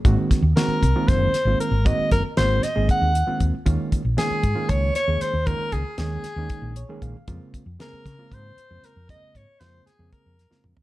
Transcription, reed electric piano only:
X:1
M:7/8
L:1/16
Q:1/4=116
K:Bbm
V:1 name="Reed electric piano"
z12 z2 | z12 z2 | z12 z2 | z8 z2 d2 f2 |
z12 z2 | z12 z2 |]
V:2 name="Reed electric piano"
[E,A,B,CG]3 z [E,A,B,CG]2 z [E,A,B,CF]3 z [E,A,B,CF]2 z | [E,A,B,CG]3 z [E,A,B,CG]2 z [E,A,B,CA]3 z [E,A,B,CF]2 z | [E,A,B,DF]3 z [E,A,B,DF]2 z [E,A,B,DF]3 z [E,A,B,DA]2 z | [E,A,B,DF]3 z [E,A,B,DA]2 z [E,A,B,DE]3 z [E,A,B,DA]2 z |
[D,A,B,CF]3 z [D,A,B,CA]2 z [D,A,B,CF]3 z [D,A,B,CF]2 z | [D,A,B,CF]3 z [D,A,B,CF]2 z [D,A,B,CA]3 z [D,A,B,CF]2 z |]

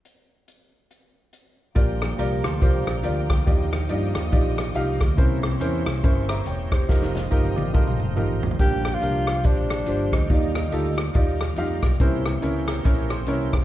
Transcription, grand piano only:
X:1
M:4/4
L:1/8
Q:"Swing" 1/4=141
K:Bb
V:1 name="Grand piano"
z8 | [FGBd] z [FGBd] z [FGBc] z [FGBd] z | [EFGd] z [EFGd] z [EFGd] z [EFGf] z | [_D=EBc] z [DEBc] z [DEBc] z3 |
[EFGB] z [EFGB] z [EFGB] z [EFGB] z | [DFGB] z [DFGB] z [DFGc] z [DFGc] z | [EFGd] z [EFGA] z [EFGd] z [EFGf] z | [_D=EBc] z [DEB_d] z [DEBd] z [DEBd] z |]
V:2 name="Grand piano"
z8 | B,,3 z4 z | E,3 z4 z | C,3 z2 [=eb] [_dg] [Gc]- |
[Gc] z6 z | B,,3 z4 z | E,3 z4 z | C,3 z4 z |]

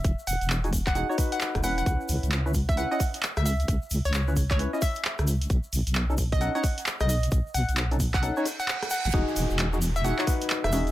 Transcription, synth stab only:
X:1
M:4/4
L:1/16
Q:"Swing 16ths" 1/4=132
K:E
V:1 name="Synth stab"
z4 z [DFG] z2 [DFG] [DFc] [DFB]4 [CEB]2- | [CEB]4- [CEB] [CEB] z2 [CEB] [CEd] z6 | z4 z [CEB] z2 [CEB] [CEd] z6 | z4 z [CDA] z2 [CDA] [CDc] z6 |
z4 z [CDA] z2 [CDA] [CDc] z6 | [DFG]4- [DFG] [DFG] z2 [DFG] [DFc] [DFB]4 [DFG]2 |]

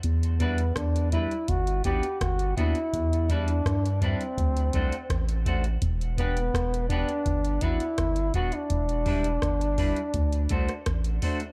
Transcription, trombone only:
X:1
M:4/4
L:1/16
Q:1/4=83
K:Em
V:1 name="Trombone"
z2 B,2 D2 E2 F2 G2 F2 E2- | E2 D4 C8 z2 | z2 B,4 D4 E4 F D- | D12- D2 z2 |]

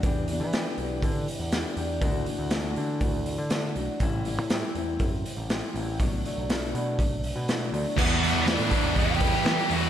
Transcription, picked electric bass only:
X:1
M:4/4
L:1/16
Q:1/4=121
K:Em
V:1 name="Picked electric bass" clef=bass
E,,3 E,2 z B,,,2 D,2 z E,,2 z E,,2 | D,,2 z D,,3 D,2 D,,3 D,3 B,,, z | A,,,3 A,,2 z E,,2 F,,2 z A,,,2 z A,,,2 | B,,,2 z B,,,3 B,,2 B,,,3 B,,3 D,, z |
E,,3 E,,2 A,, z E,,3 E,, z E, z E,,2 |]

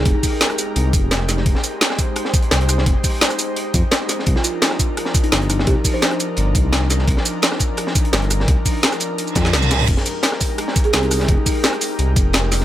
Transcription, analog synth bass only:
X:1
M:4/4
L:1/16
Q:1/4=171
K:Fm
V:1 name="Analog synth bass" clef=bass
F,,, z6 z C,,2 F,,, F,,,4- F,,, | F,,, z8 z3 C,,4 | F,,, z8 z F,, z4 z | C,, z8 z3 G,,,4 |
C,, z6 z G,,,2 C,, C,,4- C,, | C,, z8 z3 G,,,4 | C,, z8 z F,,2 C,,4 | F,,, z8 z3 C,,4 |
F,,, z6 z C,,2 F,,, F,,,4- F,,, |]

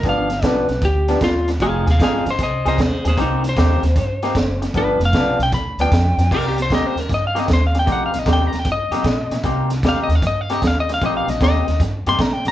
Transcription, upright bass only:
X:1
M:4/4
L:1/8
Q:"Swing" 1/4=153
K:Cm
V:1 name="Upright bass" clef=bass
G,,,2 =B,,, B,,, D,,2 E,,2 | F,,, E,, A,,, A,,, C,, C,, E,, E,, | C,,2 E,, E,, G,,2 ^F,,,2 | G,,, F,,, =B,,, B,,, D,, D,, F,, F,, |
C,,2 E,, E,, G,,2 E,,2 | B,,, B,,, E,, E,, G,, G,, B,, B,, | C,,2 E,, E,, G,,2 E,,2 | B,,, B,,, E,, E,, G,, G,, B,, A,,, |]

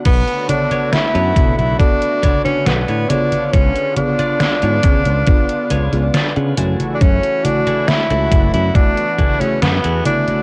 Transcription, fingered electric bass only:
X:1
M:4/4
L:1/16
Q:1/4=69
K:Bdor
V:1 name="Fingered electric bass" clef=bass
B,,, z4 F,, B,, B,,, z4 B,,, A,, z2 | C,, z4 G,, C, C,, z2 C,, C,, z C, F,, z | F,, z4 C,, F,,, F,, z4 F,, E,, z2 |]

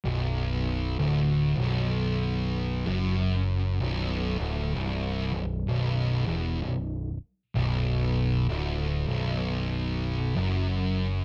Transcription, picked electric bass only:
X:1
M:4/4
L:1/8
Q:"Swing" 1/4=64
K:Bm
V:1 name="Picked electric bass" clef=bass
B,,,,2 D,,, B,,,,3 F,,,2 | B,,,, D,,, =C,,, B,,,, B,,,, E,,, B,,,, z | B,,,,2 D,,, B,,,,3 F,,,2 |]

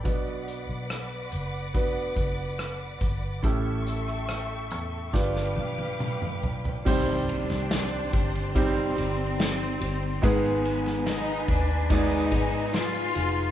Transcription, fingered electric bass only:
X:1
M:4/4
L:1/16
Q:1/4=71
K:Glyd
V:1 name="Fingered electric bass" clef=bass
B,,,3 B,,,3 F,,,4 F,,,4 G,,,2 | A,,,6 E,,2 G,,,2 B,,,4 B,,,2 | [K:Cm] C,,3 C,,3 G,,,4 G,,,4 G,,,2 | A,,,6 E,,4 A,,4 F,,,2 |]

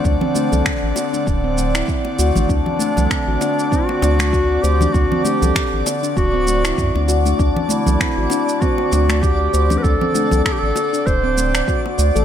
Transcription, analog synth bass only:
X:1
M:4/4
L:1/16
Q:"Swing 16ths" 1/4=98
K:Dmix
V:1 name="Analog synth bass" clef=bass
D,, z2 C,, z A,,, z2 D,,,4 z2 D,, A,,, | D,, z2 C,, z A,,, z4 D,,4 D,, z | D,, z2 C,, z A,,, z2 D,,,4 F,, D,,3 | D,, z2 C,, z A,,, z4 D,,4 D,, z |
D,, z2 C,, z A,,, z2 D,,,4 z2 D,, A,,, |]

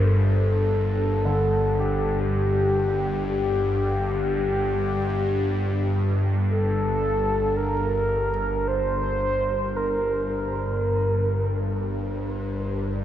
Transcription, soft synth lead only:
X:1
M:4/4
L:1/8
Q:1/4=55
K:Gm
V:1 name="Soft synth lead"
A4 G2 G2 | G3 z A2 B2 | c2 B B4 z |]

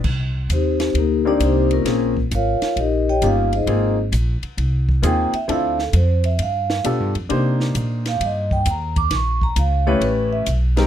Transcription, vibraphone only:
X:1
M:4/4
L:1/8
Q:"Swing" 1/4=132
K:Cdor
V:1 name="Vibraphone"
z2 [CEGc]2 [B,EGB] [Dd] [CEGc] [B,^CFB]- | [B,^CFB] z [FB_df]2 [EGBe] [Gdeg] [Ff] [E_A=ce]- | [E_Ace] z4 z g =e | f A c =e f2 z2 |
z3 f e g b d' | _d' b f _d =B =e z2 |]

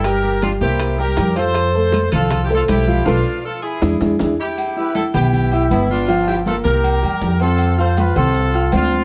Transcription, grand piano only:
X:1
M:4/4
L:1/8
Q:1/4=159
K:Ephr
V:1 name="Grand piano"
[G,Gg]2 [G,Gg] [_B,_Bc]2 [G,Gg] [G,Gg] [F,Ff]- | [F,Ff] [A,Ac]2 [F,Ff]2 [A,Ac]2 [F,Ff] | [FAB] z3 [DE^G] [DEG] [DEG] z | z [Eee']2 [B,Bb]2 [Eee'] [B,Bb]2 |
[F,Ff]2 [_B,_B_b] [B,Bb]2 [G,Gg]2 [Ccc']- | [Ccc'] [Fff']2 [Ccc']2 [Fff'] [Ccc']2 |]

